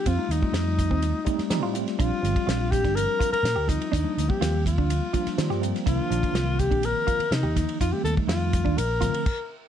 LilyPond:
<<
  \new Staff \with { instrumentName = "Alto saxophone" } { \time 4/4 \key bes \major \tempo 4 = 124 f'8 ees'2. r8 | f'4. g'8 bes'8. bes'8. ees'8~ | ees'8. g'8. f'2 r8 | f'4. g'8 bes'4 ees'4 |
f'16 g'16 a'8 f'4 bes'4. r8 | }
  \new Staff \with { instrumentName = "Clean electric guitar" } { \time 4/4 \key bes \major c'8 r8 ees'8 r16 c'8 r16 ees'8 r16 f'8 r16 | d'8 r8 f'8 r16 d'8 r16 f'8 r16 g'8 r16 | d'8 r8 f'8 r16 d'8 r16 f'8 r16 g'8 r16 | d'8 r8 f'8 r16 d'8 r16 f'8 r16 g'8 r16 |
ees'8 r8 f'8 r16 d'8 r16 f'8 r4 | }
  \new Staff \with { instrumentName = "Tine electric piano" } { \time 4/4 \key bes \major r16 <g a c' ees'>8 <g a c' f'>4. r16 <g a c' ees'>8 <g a c' ees' c''>8 <g a c' f' f''>8 | <f g c' d'>8 <f g c' f'>8 <f g c' d'>4.~ <f g c' d'>16 r8. <f g c' f'>8 | r16 <f g bes d'>8 <f g bes c'>4. r16 <f g bes d'>8 <f g bes f' d''>8 <f g bes c' g''>8 | <ees f bes d'>8 <ees f bes d'>8 <ees f bes c'>4.~ <ees f bes c'>16 r8. <ees f bes ees'>8 |
r16 <ees g a c'>8 <ees g a ees'>4~ <ees g a ees'>16 r8 <d f a c'>8 r4 | }
  \new Staff \with { instrumentName = "Fingered electric bass" } { \clef bass \time 4/4 \key bes \major f,16 r16 ees,16 r16 f,8. ees,8 r8. f16 a,8 r16 | bes,,16 r16 g,,16 r16 bes,,8. g,,8 r8. bes,16 d,8 r16 | ees,16 r16 d,16 r16 ees,8. d,8 r8. ees16 g,8 r16 | c,16 r16 bes,,16 r16 c,8. bes,,8 r8. c16 ees,8 r16 |
f,16 r16 ees,16 r16 f,8. ees,16 bes,,8. r4 r16 | }
  \new DrumStaff \with { instrumentName = "Drums" } \drummode { \time 4/4 <hhp bd cymr>8 <hhp cymr>16 bd16 <hhp cymr sn>8 <hhp bd cymr>16 bd16 <hhp cymr>8 <hhp bd cymr>16 <cymr sn>16 <hhp cymr sn>8 <hhp cymr>16 <cymr sn>16 | <hhp bd cymr>8 <hhp cymr>16 <bd cymr>16 <hhp cymr sn>8 <hhp bd cymr>16 <bd cymr sn>16 <hhp cymr>8 <hhp bd cymr>16 cymr16 <hhp cymr sn>8 <hhp bd cymr>16 cymr16 | <hhp bd cymr>8 <hhp cymr>16 bd16 <hhp cymr sn>8 <hhp bd cymr>16 bd16 <hhp cymr>8 <hhp bd cymr>16 <cymr sn>16 <hhp cymr sn>16 sn16 <hhp cymr>16 <cymr sn>16 | <hhp bd cymr>8 <hhp cymr>16 <bd cymr>16 <hhp cymr sn>8 <hhp bd cymr>16 <bd cymr>16 <hhp cymr>8 <hhp bd cymr>16 cymr16 <hhp cymr sn>8 <hhp bd cymr sn>16 cymr16 |
<hhp bd cymr>8 <hhp cymr>16 bd16 <hhp cymr sn>8 <hhp bd cymr>16 bd16 <hhp cymr>8 <hhp bd cymr>16 cymr16 <cymc bd>4 | }
>>